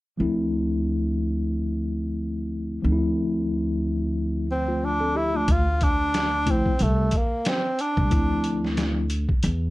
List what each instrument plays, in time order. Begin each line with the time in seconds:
0.17 upright bass D2, tine electric piano F3 A3 C4 E4
2.82 upright bass D2, tine electric piano F3 A3 C4 D#4
2.92 tine electric piano E4
4.51 tenor saxophone C4
4.68 tine electric piano A3 F4
4.85 tenor saxophone D4
5.01 tine electric piano C4 A4
5.15 tenor saxophone E4, tine electric piano G4
5.34 tine electric piano A3 F4, tenor saxophone D4
5.48 upright bass D2, tenor saxophone F4, kick, closed hi-hat
5.81 tenor saxophone D4, kick, closed hi-hat
6.14 snare, closed hi-hat
6.46 tine electric piano F3 A3 C4 E4, kick, closed hi-hat
6.51 tenor saxophone C4
6.66 kick
6.79 upright bass C2, tenor saxophone A3, closed hi-hat
7.11 kick, closed hi-hat
7.17 tenor saxophone A#3
7.45 tenor saxophone C4, snare, closed hi-hat
7.79 tenor saxophone D4, closed hi-hat
7.97 upright bass C2, kick
8.10 upright bass D2, tine electric piano F3 A3 C4 E4, kick, closed hi-hat
8.44 closed hi-hat
8.65 snare
8.77 snare, closed hi-hat
9.10 closed hi-hat
9.29 kick
9.43 upright bass E2, closed hi-hat